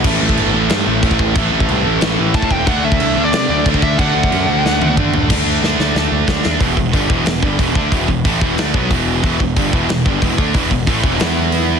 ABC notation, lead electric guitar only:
X:1
M:4/4
L:1/16
Q:1/4=183
K:Em
V:1 name="Lead electric guitar"
z16 | z12 a2 g2 | f2 e4- e d d4 z2 e2 | f12 z4 |
z16 | z16 | z16 | z16 |
z16 |]